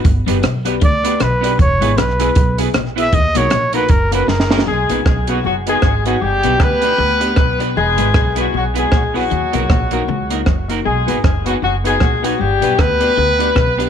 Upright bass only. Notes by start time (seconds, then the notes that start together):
0.05 G1
0.28 F#1
0.44 B1
0.82 D2
1.21 B1
1.59 E1
1.81 G#1
1.97 B1
2.37 B1
2.75 A#1
3.13 D#2
3.36 B1
3.52 A#1
3.90 F#1
4.28 F#1
4.67 B1
4.90 A#1
5.06 B1
5.45 F#1
5.83 G#1
6.22 G1
6.44 B1
6.60 D2
6.98 D2
7.37 B1
7.77 E1
8.00 G#1
8.15 B1
8.54 B1
8.92 A#1
9.31 D#2
9.54 B1
9.70 A#1
10.08 C#2
10.47 F#1
10.86 B1
11.08 G#1
11.24 F#1
11.63 F#1
12.02 A#1
12.41 G1
12.63 B1
12.79 D2
13.17 D2
13.57 B1